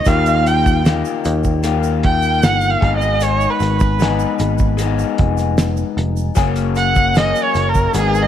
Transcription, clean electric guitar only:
0, 0, Header, 1, 2, 480
1, 0, Start_track
1, 0, Tempo, 789058
1, 42, Time_signature, 4, 2, 24, 8
1, 5034, End_track
2, 0, Start_track
2, 0, Title_t, "Clean electric guitar"
2, 0, Program_c, 0, 27
2, 39, Note_on_c, 0, 51, 74
2, 40, Note_on_c, 0, 58, 82
2, 45, Note_on_c, 0, 65, 88
2, 48, Note_on_c, 0, 67, 83
2, 508, Note_off_c, 0, 51, 0
2, 510, Note_off_c, 0, 58, 0
2, 511, Note_on_c, 0, 51, 57
2, 512, Note_off_c, 0, 65, 0
2, 517, Note_off_c, 0, 67, 0
2, 517, Note_on_c, 0, 58, 64
2, 520, Note_on_c, 0, 65, 63
2, 524, Note_on_c, 0, 67, 65
2, 989, Note_off_c, 0, 51, 0
2, 991, Note_off_c, 0, 58, 0
2, 992, Note_off_c, 0, 65, 0
2, 992, Note_on_c, 0, 51, 66
2, 996, Note_off_c, 0, 67, 0
2, 998, Note_on_c, 0, 58, 74
2, 999, Note_on_c, 0, 65, 74
2, 1004, Note_on_c, 0, 67, 76
2, 1706, Note_off_c, 0, 67, 0
2, 1708, Note_off_c, 0, 65, 0
2, 1708, Note_on_c, 0, 68, 67
2, 1710, Note_on_c, 0, 63, 64
2, 1711, Note_off_c, 0, 58, 0
2, 1713, Note_on_c, 0, 59, 57
2, 1718, Note_on_c, 0, 56, 54
2, 2426, Note_off_c, 0, 56, 0
2, 2428, Note_off_c, 0, 59, 0
2, 2428, Note_on_c, 0, 56, 58
2, 2430, Note_off_c, 0, 63, 0
2, 2435, Note_on_c, 0, 59, 62
2, 2438, Note_on_c, 0, 63, 65
2, 2441, Note_off_c, 0, 68, 0
2, 2444, Note_on_c, 0, 68, 65
2, 2900, Note_off_c, 0, 56, 0
2, 2902, Note_on_c, 0, 56, 72
2, 2906, Note_off_c, 0, 59, 0
2, 2913, Note_on_c, 0, 59, 72
2, 2917, Note_off_c, 0, 63, 0
2, 2924, Note_on_c, 0, 63, 76
2, 2927, Note_off_c, 0, 68, 0
2, 2930, Note_on_c, 0, 68, 77
2, 3121, Note_off_c, 0, 51, 0
2, 3862, Note_off_c, 0, 56, 0
2, 3864, Note_on_c, 0, 54, 86
2, 3865, Note_off_c, 0, 59, 0
2, 3867, Note_off_c, 0, 63, 0
2, 3868, Note_on_c, 0, 58, 84
2, 3870, Note_on_c, 0, 61, 89
2, 3871, Note_off_c, 0, 68, 0
2, 3873, Note_on_c, 0, 68, 92
2, 4337, Note_off_c, 0, 54, 0
2, 4340, Note_off_c, 0, 58, 0
2, 4345, Note_off_c, 0, 61, 0
2, 4345, Note_on_c, 0, 54, 61
2, 4347, Note_on_c, 0, 58, 70
2, 4352, Note_on_c, 0, 61, 66
2, 4353, Note_off_c, 0, 68, 0
2, 4356, Note_on_c, 0, 68, 68
2, 4824, Note_on_c, 0, 44, 63
2, 4832, Note_off_c, 0, 54, 0
2, 4834, Note_off_c, 0, 58, 0
2, 4835, Note_on_c, 0, 51, 63
2, 4836, Note_off_c, 0, 61, 0
2, 4838, Note_off_c, 0, 68, 0
2, 4843, Note_on_c, 0, 59, 60
2, 4853, Note_on_c, 0, 63, 65
2, 5034, Note_off_c, 0, 44, 0
2, 5034, Note_off_c, 0, 51, 0
2, 5034, Note_off_c, 0, 59, 0
2, 5034, Note_off_c, 0, 63, 0
2, 5034, End_track
0, 0, End_of_file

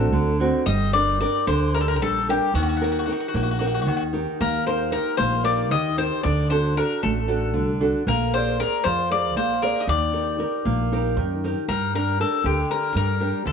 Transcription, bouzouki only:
0, 0, Header, 1, 2, 480
1, 0, Start_track
1, 0, Tempo, 530504
1, 606, Time_signature, 7, 3, 24, 8
1, 6359, Tempo, 515021
1, 12412, End_track
2, 0, Start_track
2, 0, Title_t, "Bouzouki"
2, 0, Program_c, 0, 25
2, 0, Note_on_c, 0, 69, 69
2, 324, Note_off_c, 0, 69, 0
2, 597, Note_on_c, 0, 75, 107
2, 840, Note_off_c, 0, 75, 0
2, 844, Note_on_c, 0, 74, 92
2, 1071, Note_off_c, 0, 74, 0
2, 1090, Note_on_c, 0, 74, 95
2, 1329, Note_off_c, 0, 74, 0
2, 1333, Note_on_c, 0, 72, 102
2, 1558, Note_off_c, 0, 72, 0
2, 1579, Note_on_c, 0, 70, 93
2, 1631, Note_off_c, 0, 70, 0
2, 1634, Note_on_c, 0, 69, 75
2, 1695, Note_off_c, 0, 69, 0
2, 1702, Note_on_c, 0, 70, 89
2, 1763, Note_off_c, 0, 70, 0
2, 1773, Note_on_c, 0, 70, 72
2, 1825, Note_off_c, 0, 70, 0
2, 1829, Note_on_c, 0, 69, 95
2, 2048, Note_off_c, 0, 69, 0
2, 2079, Note_on_c, 0, 67, 88
2, 2293, Note_off_c, 0, 67, 0
2, 2306, Note_on_c, 0, 66, 81
2, 2365, Note_off_c, 0, 66, 0
2, 2377, Note_on_c, 0, 66, 56
2, 2423, Note_off_c, 0, 66, 0
2, 2433, Note_on_c, 0, 66, 60
2, 2492, Note_off_c, 0, 66, 0
2, 2503, Note_on_c, 0, 66, 54
2, 2559, Note_off_c, 0, 66, 0
2, 2570, Note_on_c, 0, 66, 58
2, 2630, Note_off_c, 0, 66, 0
2, 2640, Note_on_c, 0, 66, 51
2, 2693, Note_off_c, 0, 66, 0
2, 2704, Note_on_c, 0, 66, 54
2, 2756, Note_off_c, 0, 66, 0
2, 2767, Note_on_c, 0, 66, 46
2, 2815, Note_off_c, 0, 66, 0
2, 2826, Note_on_c, 0, 66, 57
2, 2887, Note_off_c, 0, 66, 0
2, 2898, Note_on_c, 0, 66, 46
2, 2959, Note_off_c, 0, 66, 0
2, 2969, Note_on_c, 0, 66, 51
2, 3030, Note_off_c, 0, 66, 0
2, 3042, Note_on_c, 0, 66, 46
2, 3091, Note_off_c, 0, 66, 0
2, 3102, Note_on_c, 0, 66, 49
2, 3163, Note_off_c, 0, 66, 0
2, 3176, Note_on_c, 0, 66, 52
2, 3233, Note_off_c, 0, 66, 0
2, 3247, Note_on_c, 0, 66, 62
2, 3302, Note_off_c, 0, 66, 0
2, 3322, Note_on_c, 0, 66, 49
2, 3373, Note_off_c, 0, 66, 0
2, 3389, Note_on_c, 0, 66, 55
2, 3440, Note_off_c, 0, 66, 0
2, 3454, Note_on_c, 0, 66, 51
2, 3501, Note_off_c, 0, 66, 0
2, 3512, Note_on_c, 0, 66, 60
2, 3568, Note_off_c, 0, 66, 0
2, 3590, Note_on_c, 0, 66, 56
2, 3640, Note_off_c, 0, 66, 0
2, 3988, Note_on_c, 0, 70, 89
2, 4206, Note_off_c, 0, 70, 0
2, 4222, Note_on_c, 0, 72, 78
2, 4442, Note_off_c, 0, 72, 0
2, 4454, Note_on_c, 0, 70, 84
2, 4677, Note_off_c, 0, 70, 0
2, 4680, Note_on_c, 0, 72, 95
2, 4909, Note_off_c, 0, 72, 0
2, 4928, Note_on_c, 0, 74, 87
2, 5166, Note_off_c, 0, 74, 0
2, 5170, Note_on_c, 0, 75, 114
2, 5392, Note_off_c, 0, 75, 0
2, 5411, Note_on_c, 0, 72, 91
2, 5631, Note_off_c, 0, 72, 0
2, 5639, Note_on_c, 0, 74, 98
2, 5877, Note_off_c, 0, 74, 0
2, 5881, Note_on_c, 0, 72, 77
2, 6102, Note_off_c, 0, 72, 0
2, 6128, Note_on_c, 0, 70, 86
2, 6344, Note_off_c, 0, 70, 0
2, 6360, Note_on_c, 0, 69, 76
2, 7051, Note_off_c, 0, 69, 0
2, 7341, Note_on_c, 0, 70, 94
2, 7561, Note_off_c, 0, 70, 0
2, 7579, Note_on_c, 0, 72, 87
2, 7801, Note_off_c, 0, 72, 0
2, 7823, Note_on_c, 0, 70, 96
2, 8046, Note_on_c, 0, 72, 98
2, 8067, Note_off_c, 0, 70, 0
2, 8275, Note_off_c, 0, 72, 0
2, 8304, Note_on_c, 0, 74, 97
2, 8525, Note_off_c, 0, 74, 0
2, 8540, Note_on_c, 0, 72, 96
2, 8763, Note_off_c, 0, 72, 0
2, 8778, Note_on_c, 0, 70, 89
2, 8946, Note_on_c, 0, 75, 65
2, 8962, Note_off_c, 0, 70, 0
2, 9014, Note_off_c, 0, 75, 0
2, 9027, Note_on_c, 0, 74, 104
2, 10423, Note_off_c, 0, 74, 0
2, 10700, Note_on_c, 0, 70, 86
2, 10919, Note_off_c, 0, 70, 0
2, 10949, Note_on_c, 0, 70, 76
2, 11163, Note_off_c, 0, 70, 0
2, 11187, Note_on_c, 0, 69, 82
2, 11401, Note_off_c, 0, 69, 0
2, 11418, Note_on_c, 0, 67, 84
2, 11635, Note_off_c, 0, 67, 0
2, 11654, Note_on_c, 0, 70, 81
2, 11871, Note_off_c, 0, 70, 0
2, 11893, Note_on_c, 0, 70, 94
2, 12329, Note_off_c, 0, 70, 0
2, 12362, Note_on_c, 0, 69, 93
2, 12412, Note_off_c, 0, 69, 0
2, 12412, End_track
0, 0, End_of_file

